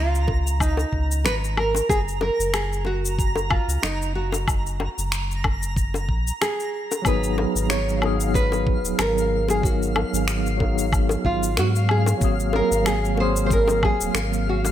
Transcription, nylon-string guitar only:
Already playing: F4
0.61 D#4
1.26 B4
1.57 A#4
1.89 G#4
2.22 A#4
2.54 G#4
2.86 F#4
3.50 F4
3.83 D#4
4.15 F#4
6.42 G#4
7.06 B4
7.70 C#5
8.35 B4
8.99 A#4
9.50 G#4
9.64 F#4
11.25 F4
11.59 F#4
11.91 G#4
12.56 A#4
12.87 G#4
13.20 C5
13.46 C5
13.53 A#4
13.85 G#4
14.49 F#4

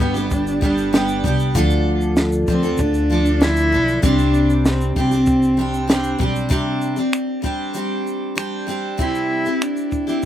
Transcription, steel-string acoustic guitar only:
Already playing: D3
0.00 G3 B3 D4 G4
0.14 G3 B3 D4 G4
0.61 G3 B3 D4 G4
0.93 G3 B3 D4 G4
1.24 G3 B3 D4 G4
1.55 D3 F3 D4 F4 A4
2.48 F3 D4 F4 A4
2.63 D4 F4 A4
3.10 F3 D4 F4 A4
3.40 F3 D4 A4
3.72 F3 D4 A4
4.02 C3 G3 C4 D4 G4
4.96 G3 C4 D4 G4
5.11 C4 D4 G4
5.57 G3 C4 D4 G4
5.88 G3 C4 D4 G4
6.18 G3 C4 D4 G4
6.49 C3 G3 C4 D4 G4
6.96 C4 D4 G4
7.42 G3 C4 D4 G4
7.74 G3 C4 D4 G4
8.35 G3 C4 D4 G4
8.67 G3 C4 D4 G4
8.97 C3 G3 C4 E4 G4
9.45 C4 E4 G4
10.07 C4 E4 G4

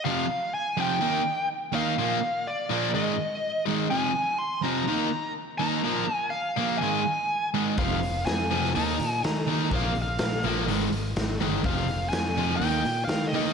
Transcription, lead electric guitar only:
0.04 F5
0.54 G#5
0.81 G5
1.75 F5
2.47 D5
2.95 D#5
3.90 G#5
4.38 C6
4.63 A#5
5.58 A#5
6.15 G#5
6.30 F5
6.78 G#5
7.79 F5
8.26 G#5
8.76 A#5
9.25 A#5
9.76 F5
10.02 F5
11.65 F5
12.09 G#5
12.57 G5
13.04 F5
13.28 D#5

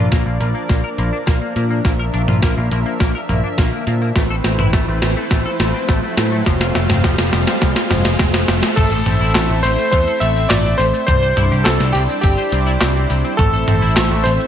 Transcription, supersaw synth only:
Already playing: F3 A#3 D4 A#4 D5
1.85 E5
4.15 A3 C4 E4 B4 C5
6.46 F4 C5 F5
8.77 A3 E4 E5
11.08 G3 D4 D5
13.39 A3 C4 E5

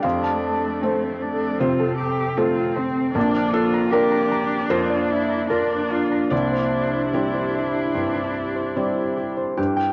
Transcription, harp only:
0.04 C4
0.23 A5
1.80 A4
2.76 C5
3.15 A#3
3.35 D6
3.74 A#5
3.92 A#4
4.12 A#5
4.32 A#5
4.70 A#4
4.90 D5
5.30 A#5
5.50 A#4
5.90 F5
6.11 A#5
6.32 C4
6.52 C5
6.93 C5
7.13 C4
7.34 C5
7.54 C5
7.94 C4
8.15 E4
8.56 C5
8.76 C4
9.17 G4
9.37 C5
9.58 G4
9.77 G5

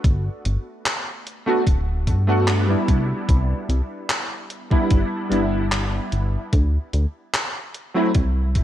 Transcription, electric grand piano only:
Already playing: A3 B3 D4 F#4
1.46 A3 B3 D4 F#4
2.27 A3 B3 D4 F#4
2.67 G3 B3 D4 E4
4.70 G3 B3 D4 E4
5.29 G3 B3 D4 E4
7.94 F#3 A3 C4 E4

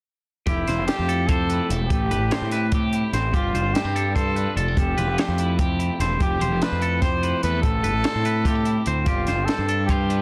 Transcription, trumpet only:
0.48 E4
0.87 G4
1.27 A4
1.88 G4
3.34 F4
3.74 G4
4.15 A4
4.78 G4
6.21 G4
6.62 B4
7.02 C5
7.43 B4
7.63 A4
9.04 F4
9.45 A4
9.86 G4

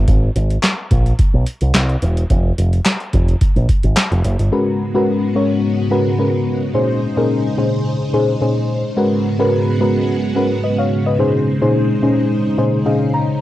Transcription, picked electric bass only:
0.08 G#1
0.36 G#1
0.91 A#1
1.34 B1
1.61 C2
1.74 C2
2.02 E1
2.30 F1
2.58 F1
3.14 F1
3.56 A#1
3.84 G#1
4.12 F1
4.25 F#1
4.39 G1

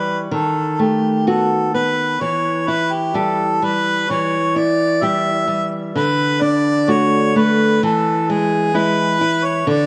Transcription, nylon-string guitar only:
Already playing: E3 G3
0.31 D#3
0.79 A3
1.27 B3 F#4
1.74 B3
2.21 E3
2.68 E4
3.14 G3 G4
3.62 G3
4.10 E3
4.56 E4
5.02 G3 G4
5.48 G3
5.96 D3
6.41 D4
6.88 A3 F#4
7.36 A3
7.83 E3
8.30 G#3
8.74 G#3 E4
9.21 E4
9.67 D3

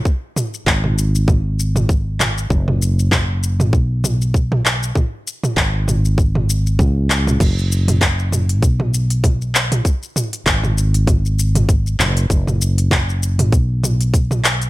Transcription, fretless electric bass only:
0.67 G#1
2.51 F#1
3.73 B1
5.57 G#1
6.79 C#2
7.40 F#1
8.62 B1
10.46 G#1
12.00 F#1
12.30 F#1
13.53 B1

